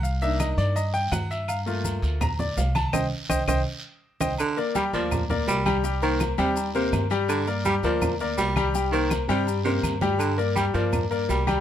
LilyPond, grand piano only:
\new Staff \with { instrumentName = "Grand piano" } { \time 4/4 \key g \minor \tempo 4 = 165 << { f''8 e''8 ees''8 d''8 ees''8 g''8 fis''8 e''8 | f''8 r4. bes''8 d''8 f''8 a''8 | <c'' ees'' g''>8 r8 <c'' ees'' g''>8 <c'' ees'' g''>8 r4. <c'' ees'' g''>8 | r8 <bes bes' d''>8 <g g' g''>8 <bes bes' d''>4 <bes bes' d''>4 <g g' g''>8 |
<g g' g''>8 <bes bes' c''>4 <g g' g''>4 <bes bes' c''>4 <g g' g''>8~ | <g g' g''>8 <bes bes' d''>8 <g g' g''>8 <bes bes' d''>4 <bes bes' d''>4 <g g' g''>8 | <g g' g''>8 <bes bes' c''>4 <g g' g''>4 <bes bes' c''>4 <g g' g''>8~ | <g g' g''>8 <bes bes' d''>8 <g g' g''>8 <bes bes' d''>4 <bes bes' d''>4 <g g' g''>8 | } \\ { r8 <bes d' ees'>4. r2 | r8 <a bes f'>4. r2 | r1 | r1 |
r1 | r1 | r1 | r1 | } >> }